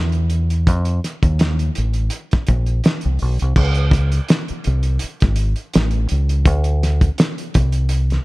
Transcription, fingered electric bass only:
0, 0, Header, 1, 3, 480
1, 0, Start_track
1, 0, Tempo, 722892
1, 446, Time_signature, 4, 2, 24, 8
1, 5477, End_track
2, 0, Start_track
2, 0, Title_t, "Fingered electric bass"
2, 0, Program_c, 0, 33
2, 0, Note_on_c, 0, 40, 84
2, 453, Note_off_c, 0, 40, 0
2, 453, Note_on_c, 0, 41, 96
2, 655, Note_off_c, 0, 41, 0
2, 823, Note_on_c, 0, 39, 96
2, 1121, Note_off_c, 0, 39, 0
2, 1183, Note_on_c, 0, 33, 75
2, 1381, Note_off_c, 0, 33, 0
2, 1658, Note_on_c, 0, 34, 89
2, 1858, Note_off_c, 0, 34, 0
2, 2029, Note_on_c, 0, 36, 79
2, 2118, Note_off_c, 0, 36, 0
2, 2140, Note_on_c, 0, 35, 82
2, 2244, Note_off_c, 0, 35, 0
2, 2271, Note_on_c, 0, 36, 74
2, 2359, Note_off_c, 0, 36, 0
2, 2372, Note_on_c, 0, 37, 109
2, 2781, Note_off_c, 0, 37, 0
2, 3102, Note_on_c, 0, 36, 94
2, 3301, Note_off_c, 0, 36, 0
2, 3475, Note_on_c, 0, 32, 96
2, 3672, Note_off_c, 0, 32, 0
2, 3823, Note_on_c, 0, 33, 97
2, 4022, Note_off_c, 0, 33, 0
2, 4061, Note_on_c, 0, 37, 93
2, 4295, Note_off_c, 0, 37, 0
2, 4295, Note_on_c, 0, 38, 100
2, 4702, Note_off_c, 0, 38, 0
2, 5023, Note_on_c, 0, 36, 93
2, 5427, Note_off_c, 0, 36, 0
2, 5477, End_track
3, 0, Start_track
3, 0, Title_t, "Muted fingered electric bass strokes"
3, 1556, Note_on_c, 9, 29, 40
3, 1622, Note_off_c, 9, 29, 0
3, 2991, Note_on_c, 9, 29, 46
3, 3057, Note_off_c, 9, 29, 0
3, 3344, Note_on_c, 9, 29, 51
3, 3410, Note_off_c, 9, 29, 0
3, 5477, End_track
0, 0, End_of_file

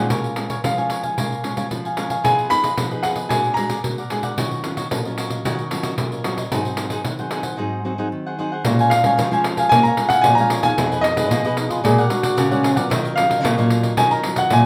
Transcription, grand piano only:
0, 0, Header, 1, 2, 480
1, 0, Start_track
1, 0, Key_signature, -5, "minor"
1, 0, Tempo, 533333
1, 103, Time_signature, 4, 2, 24, 8
1, 13193, End_track
2, 0, Start_track
2, 0, Title_t, "Grand piano"
2, 0, Program_c, 0, 0
2, 579, Note_on_c, 0, 77, 66
2, 2020, Note_on_c, 0, 80, 89
2, 2063, Note_off_c, 0, 77, 0
2, 2250, Note_on_c, 0, 83, 111
2, 2268, Note_off_c, 0, 80, 0
2, 2724, Note_on_c, 0, 78, 78
2, 2751, Note_off_c, 0, 83, 0
2, 2780, Note_off_c, 0, 78, 0
2, 2964, Note_on_c, 0, 80, 85
2, 3186, Note_on_c, 0, 82, 87
2, 3220, Note_off_c, 0, 80, 0
2, 3650, Note_off_c, 0, 82, 0
2, 8009, Note_on_c, 0, 77, 86
2, 8699, Note_off_c, 0, 77, 0
2, 8724, Note_on_c, 0, 80, 100
2, 8844, Note_off_c, 0, 80, 0
2, 8850, Note_on_c, 0, 82, 79
2, 9077, Note_on_c, 0, 78, 92
2, 9103, Note_off_c, 0, 82, 0
2, 9194, Note_on_c, 0, 80, 90
2, 9213, Note_off_c, 0, 78, 0
2, 9315, Note_on_c, 0, 82, 89
2, 9318, Note_off_c, 0, 80, 0
2, 9566, Note_on_c, 0, 80, 95
2, 9575, Note_off_c, 0, 82, 0
2, 9912, Note_on_c, 0, 75, 97
2, 9944, Note_off_c, 0, 80, 0
2, 10610, Note_off_c, 0, 75, 0
2, 11840, Note_on_c, 0, 77, 90
2, 12579, Note_on_c, 0, 80, 92
2, 12592, Note_off_c, 0, 77, 0
2, 12691, Note_off_c, 0, 80, 0
2, 12699, Note_on_c, 0, 82, 76
2, 12945, Note_on_c, 0, 78, 84
2, 12947, Note_off_c, 0, 82, 0
2, 13066, Note_off_c, 0, 78, 0
2, 13076, Note_on_c, 0, 80, 92
2, 13193, Note_off_c, 0, 80, 0
2, 13193, End_track
0, 0, End_of_file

